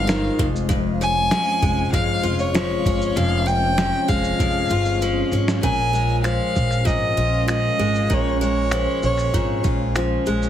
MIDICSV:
0, 0, Header, 1, 6, 480
1, 0, Start_track
1, 0, Tempo, 617284
1, 547, Time_signature, 4, 2, 24, 8
1, 8160, End_track
2, 0, Start_track
2, 0, Title_t, "Violin"
2, 0, Program_c, 0, 40
2, 0, Note_on_c, 0, 77, 99
2, 271, Note_off_c, 0, 77, 0
2, 791, Note_on_c, 0, 80, 121
2, 1476, Note_off_c, 0, 80, 0
2, 1505, Note_on_c, 0, 77, 94
2, 1839, Note_off_c, 0, 77, 0
2, 1868, Note_on_c, 0, 73, 90
2, 2461, Note_on_c, 0, 77, 98
2, 2473, Note_off_c, 0, 73, 0
2, 2699, Note_on_c, 0, 79, 102
2, 2711, Note_off_c, 0, 77, 0
2, 3174, Note_on_c, 0, 77, 87
2, 3186, Note_off_c, 0, 79, 0
2, 4138, Note_off_c, 0, 77, 0
2, 4371, Note_on_c, 0, 80, 100
2, 4825, Note_off_c, 0, 80, 0
2, 4858, Note_on_c, 0, 77, 86
2, 5338, Note_on_c, 0, 75, 92
2, 5350, Note_off_c, 0, 77, 0
2, 5820, Note_off_c, 0, 75, 0
2, 5826, Note_on_c, 0, 75, 86
2, 6325, Note_on_c, 0, 73, 89
2, 6337, Note_off_c, 0, 75, 0
2, 6551, Note_off_c, 0, 73, 0
2, 6556, Note_on_c, 0, 73, 90
2, 6999, Note_off_c, 0, 73, 0
2, 7036, Note_on_c, 0, 73, 80
2, 7480, Note_off_c, 0, 73, 0
2, 8160, End_track
3, 0, Start_track
3, 0, Title_t, "Ambient pad"
3, 0, Program_c, 1, 92
3, 0, Note_on_c, 1, 56, 84
3, 0, Note_on_c, 1, 63, 70
3, 0, Note_on_c, 1, 72, 69
3, 0, Note_on_c, 1, 77, 86
3, 284, Note_off_c, 1, 72, 0
3, 288, Note_off_c, 1, 63, 0
3, 310, Note_on_c, 1, 61, 66
3, 312, Note_on_c, 1, 73, 72
3, 4351, Note_off_c, 1, 61, 0
3, 4352, Note_off_c, 1, 73, 0
3, 4353, Note_off_c, 1, 77, 0
3, 4362, Note_off_c, 1, 56, 0
3, 4368, Note_on_c, 1, 61, 72
3, 4370, Note_on_c, 1, 70, 64
3, 4372, Note_on_c, 1, 56, 74
3, 4374, Note_on_c, 1, 77, 83
3, 6278, Note_off_c, 1, 70, 0
3, 6301, Note_on_c, 1, 73, 75
3, 8160, Note_off_c, 1, 56, 0
3, 8160, Note_off_c, 1, 61, 0
3, 8160, Note_off_c, 1, 73, 0
3, 8160, Note_off_c, 1, 77, 0
3, 8160, End_track
4, 0, Start_track
4, 0, Title_t, "Steel-string acoustic guitar"
4, 0, Program_c, 2, 25
4, 0, Note_on_c, 2, 41, 77
4, 0, Note_on_c, 2, 56, 59
4, 0, Note_on_c, 2, 60, 59
4, 0, Note_on_c, 2, 65, 69
4, 57, Note_on_c, 2, 51, 68
4, 296, Note_off_c, 2, 41, 0
4, 305, Note_on_c, 2, 41, 88
4, 350, Note_off_c, 2, 51, 0
4, 526, Note_off_c, 2, 41, 0
4, 535, Note_on_c, 2, 41, 89
4, 783, Note_off_c, 2, 60, 0
4, 786, Note_on_c, 2, 61, 56
4, 1024, Note_on_c, 2, 53, 68
4, 1260, Note_off_c, 2, 56, 0
4, 1263, Note_on_c, 2, 56, 60
4, 1496, Note_off_c, 2, 41, 0
4, 1506, Note_on_c, 2, 41, 78
4, 1733, Note_off_c, 2, 65, 0
4, 1736, Note_on_c, 2, 65, 64
4, 1976, Note_off_c, 2, 53, 0
4, 1979, Note_on_c, 2, 53, 64
4, 2224, Note_off_c, 2, 61, 0
4, 2227, Note_on_c, 2, 61, 69
4, 2455, Note_off_c, 2, 41, 0
4, 2464, Note_on_c, 2, 41, 84
4, 2686, Note_off_c, 2, 61, 0
4, 2689, Note_on_c, 2, 61, 55
4, 2934, Note_off_c, 2, 53, 0
4, 2937, Note_on_c, 2, 53, 67
4, 3172, Note_off_c, 2, 56, 0
4, 3175, Note_on_c, 2, 56, 53
4, 3413, Note_off_c, 2, 41, 0
4, 3422, Note_on_c, 2, 41, 70
4, 3656, Note_off_c, 2, 65, 0
4, 3659, Note_on_c, 2, 65, 66
4, 3901, Note_off_c, 2, 53, 0
4, 3905, Note_on_c, 2, 53, 67
4, 4142, Note_off_c, 2, 61, 0
4, 4145, Note_on_c, 2, 61, 61
4, 4379, Note_on_c, 2, 46, 81
4, 4429, Note_off_c, 2, 41, 0
4, 4609, Note_off_c, 2, 56, 0
4, 4612, Note_on_c, 2, 56, 51
4, 4850, Note_off_c, 2, 53, 0
4, 4853, Note_on_c, 2, 53, 64
4, 5318, Note_off_c, 2, 46, 0
4, 5327, Note_on_c, 2, 46, 68
4, 5575, Note_off_c, 2, 65, 0
4, 5578, Note_on_c, 2, 65, 67
4, 5811, Note_off_c, 2, 53, 0
4, 5814, Note_on_c, 2, 53, 61
4, 6051, Note_off_c, 2, 56, 0
4, 6060, Note_on_c, 2, 56, 63
4, 6288, Note_off_c, 2, 46, 0
4, 6297, Note_on_c, 2, 46, 82
4, 6531, Note_off_c, 2, 56, 0
4, 6540, Note_on_c, 2, 56, 56
4, 6780, Note_off_c, 2, 53, 0
4, 6783, Note_on_c, 2, 53, 64
4, 6866, Note_off_c, 2, 61, 0
4, 7254, Note_off_c, 2, 46, 0
4, 7264, Note_on_c, 2, 46, 71
4, 7493, Note_off_c, 2, 65, 0
4, 7496, Note_on_c, 2, 65, 59
4, 7745, Note_off_c, 2, 53, 0
4, 7748, Note_on_c, 2, 53, 65
4, 7974, Note_off_c, 2, 56, 0
4, 7984, Note_on_c, 2, 56, 66
4, 8160, Note_off_c, 2, 46, 0
4, 8160, Note_off_c, 2, 53, 0
4, 8160, Note_off_c, 2, 56, 0
4, 8160, Note_off_c, 2, 65, 0
4, 8160, End_track
5, 0, Start_track
5, 0, Title_t, "Upright bass"
5, 0, Program_c, 3, 32
5, 0, Note_on_c, 3, 31, 95
5, 217, Note_off_c, 3, 31, 0
5, 304, Note_on_c, 3, 29, 99
5, 992, Note_off_c, 3, 29, 0
5, 1261, Note_on_c, 3, 29, 94
5, 1459, Note_off_c, 3, 29, 0
5, 1500, Note_on_c, 3, 31, 81
5, 1698, Note_off_c, 3, 31, 0
5, 1742, Note_on_c, 3, 29, 82
5, 2136, Note_off_c, 3, 29, 0
5, 2221, Note_on_c, 3, 31, 84
5, 2418, Note_off_c, 3, 31, 0
5, 2458, Note_on_c, 3, 29, 99
5, 3029, Note_off_c, 3, 29, 0
5, 3180, Note_on_c, 3, 29, 82
5, 3377, Note_off_c, 3, 29, 0
5, 3419, Note_on_c, 3, 29, 76
5, 3617, Note_off_c, 3, 29, 0
5, 3655, Note_on_c, 3, 31, 86
5, 4051, Note_off_c, 3, 31, 0
5, 4135, Note_on_c, 3, 32, 87
5, 4334, Note_off_c, 3, 32, 0
5, 4381, Note_on_c, 3, 34, 99
5, 4951, Note_off_c, 3, 34, 0
5, 5103, Note_on_c, 3, 34, 94
5, 5299, Note_off_c, 3, 34, 0
5, 5337, Note_on_c, 3, 32, 74
5, 5536, Note_off_c, 3, 32, 0
5, 5577, Note_on_c, 3, 34, 75
5, 5973, Note_off_c, 3, 34, 0
5, 6059, Note_on_c, 3, 32, 89
5, 6257, Note_off_c, 3, 32, 0
5, 6303, Note_on_c, 3, 34, 92
5, 6874, Note_off_c, 3, 34, 0
5, 7022, Note_on_c, 3, 34, 100
5, 7220, Note_off_c, 3, 34, 0
5, 7258, Note_on_c, 3, 32, 91
5, 7458, Note_off_c, 3, 32, 0
5, 7500, Note_on_c, 3, 34, 87
5, 7896, Note_off_c, 3, 34, 0
5, 7987, Note_on_c, 3, 34, 85
5, 8160, Note_off_c, 3, 34, 0
5, 8160, End_track
6, 0, Start_track
6, 0, Title_t, "Drums"
6, 68, Note_on_c, 9, 82, 81
6, 70, Note_on_c, 9, 38, 113
6, 146, Note_off_c, 9, 82, 0
6, 148, Note_off_c, 9, 38, 0
6, 302, Note_on_c, 9, 36, 80
6, 302, Note_on_c, 9, 82, 45
6, 380, Note_off_c, 9, 36, 0
6, 380, Note_off_c, 9, 82, 0
6, 433, Note_on_c, 9, 82, 50
6, 510, Note_off_c, 9, 82, 0
6, 542, Note_on_c, 9, 82, 68
6, 543, Note_on_c, 9, 36, 84
6, 620, Note_off_c, 9, 36, 0
6, 620, Note_off_c, 9, 82, 0
6, 790, Note_on_c, 9, 82, 51
6, 867, Note_off_c, 9, 82, 0
6, 1021, Note_on_c, 9, 38, 111
6, 1021, Note_on_c, 9, 82, 65
6, 1099, Note_off_c, 9, 38, 0
6, 1099, Note_off_c, 9, 82, 0
6, 1260, Note_on_c, 9, 82, 53
6, 1263, Note_on_c, 9, 36, 85
6, 1338, Note_off_c, 9, 82, 0
6, 1341, Note_off_c, 9, 36, 0
6, 1499, Note_on_c, 9, 36, 73
6, 1504, Note_on_c, 9, 82, 56
6, 1577, Note_off_c, 9, 36, 0
6, 1581, Note_off_c, 9, 82, 0
6, 1734, Note_on_c, 9, 82, 52
6, 1812, Note_off_c, 9, 82, 0
6, 1857, Note_on_c, 9, 82, 44
6, 1935, Note_off_c, 9, 82, 0
6, 1983, Note_on_c, 9, 82, 74
6, 1985, Note_on_c, 9, 38, 125
6, 2061, Note_off_c, 9, 82, 0
6, 2063, Note_off_c, 9, 38, 0
6, 2220, Note_on_c, 9, 36, 84
6, 2221, Note_on_c, 9, 82, 43
6, 2297, Note_off_c, 9, 36, 0
6, 2299, Note_off_c, 9, 82, 0
6, 2345, Note_on_c, 9, 82, 51
6, 2422, Note_off_c, 9, 82, 0
6, 2459, Note_on_c, 9, 82, 68
6, 2537, Note_off_c, 9, 82, 0
6, 2702, Note_on_c, 9, 82, 47
6, 2779, Note_off_c, 9, 82, 0
6, 2939, Note_on_c, 9, 38, 105
6, 2940, Note_on_c, 9, 82, 64
6, 3017, Note_off_c, 9, 38, 0
6, 3018, Note_off_c, 9, 82, 0
6, 3174, Note_on_c, 9, 82, 47
6, 3179, Note_on_c, 9, 36, 79
6, 3252, Note_off_c, 9, 82, 0
6, 3257, Note_off_c, 9, 36, 0
6, 3297, Note_on_c, 9, 82, 53
6, 3375, Note_off_c, 9, 82, 0
6, 3416, Note_on_c, 9, 36, 79
6, 3420, Note_on_c, 9, 82, 54
6, 3494, Note_off_c, 9, 36, 0
6, 3498, Note_off_c, 9, 82, 0
6, 3649, Note_on_c, 9, 82, 53
6, 3727, Note_off_c, 9, 82, 0
6, 3772, Note_on_c, 9, 82, 45
6, 3850, Note_off_c, 9, 82, 0
6, 3901, Note_on_c, 9, 82, 68
6, 3979, Note_off_c, 9, 82, 0
6, 4136, Note_on_c, 9, 82, 37
6, 4214, Note_off_c, 9, 82, 0
6, 4262, Note_on_c, 9, 38, 90
6, 4266, Note_on_c, 9, 82, 53
6, 4340, Note_off_c, 9, 38, 0
6, 4344, Note_off_c, 9, 82, 0
6, 4380, Note_on_c, 9, 36, 84
6, 4380, Note_on_c, 9, 82, 68
6, 4457, Note_off_c, 9, 36, 0
6, 4458, Note_off_c, 9, 82, 0
6, 4622, Note_on_c, 9, 82, 50
6, 4700, Note_off_c, 9, 82, 0
6, 4855, Note_on_c, 9, 26, 95
6, 4856, Note_on_c, 9, 82, 62
6, 4933, Note_off_c, 9, 26, 0
6, 4933, Note_off_c, 9, 82, 0
6, 5098, Note_on_c, 9, 82, 49
6, 5102, Note_on_c, 9, 36, 77
6, 5176, Note_off_c, 9, 82, 0
6, 5180, Note_off_c, 9, 36, 0
6, 5215, Note_on_c, 9, 26, 35
6, 5223, Note_on_c, 9, 82, 45
6, 5293, Note_off_c, 9, 26, 0
6, 5301, Note_off_c, 9, 82, 0
6, 5338, Note_on_c, 9, 36, 81
6, 5341, Note_on_c, 9, 82, 56
6, 5415, Note_off_c, 9, 36, 0
6, 5419, Note_off_c, 9, 82, 0
6, 5574, Note_on_c, 9, 82, 45
6, 5652, Note_off_c, 9, 82, 0
6, 5818, Note_on_c, 9, 82, 65
6, 5820, Note_on_c, 9, 26, 107
6, 5896, Note_off_c, 9, 82, 0
6, 5897, Note_off_c, 9, 26, 0
6, 6060, Note_on_c, 9, 82, 38
6, 6138, Note_off_c, 9, 82, 0
6, 6181, Note_on_c, 9, 82, 44
6, 6259, Note_off_c, 9, 82, 0
6, 6299, Note_on_c, 9, 82, 62
6, 6300, Note_on_c, 9, 36, 85
6, 6377, Note_off_c, 9, 36, 0
6, 6377, Note_off_c, 9, 82, 0
6, 6545, Note_on_c, 9, 82, 49
6, 6623, Note_off_c, 9, 82, 0
6, 6776, Note_on_c, 9, 26, 106
6, 6777, Note_on_c, 9, 82, 61
6, 6854, Note_off_c, 9, 26, 0
6, 6855, Note_off_c, 9, 82, 0
6, 7018, Note_on_c, 9, 82, 43
6, 7096, Note_off_c, 9, 82, 0
6, 7135, Note_on_c, 9, 26, 34
6, 7142, Note_on_c, 9, 82, 50
6, 7213, Note_off_c, 9, 26, 0
6, 7220, Note_off_c, 9, 82, 0
6, 7260, Note_on_c, 9, 36, 77
6, 7262, Note_on_c, 9, 82, 54
6, 7338, Note_off_c, 9, 36, 0
6, 7340, Note_off_c, 9, 82, 0
6, 7495, Note_on_c, 9, 82, 48
6, 7500, Note_on_c, 9, 36, 91
6, 7572, Note_off_c, 9, 82, 0
6, 7577, Note_off_c, 9, 36, 0
6, 7740, Note_on_c, 9, 82, 68
6, 7742, Note_on_c, 9, 26, 110
6, 7818, Note_off_c, 9, 82, 0
6, 7820, Note_off_c, 9, 26, 0
6, 7979, Note_on_c, 9, 82, 39
6, 8057, Note_off_c, 9, 82, 0
6, 8106, Note_on_c, 9, 82, 48
6, 8160, Note_off_c, 9, 82, 0
6, 8160, End_track
0, 0, End_of_file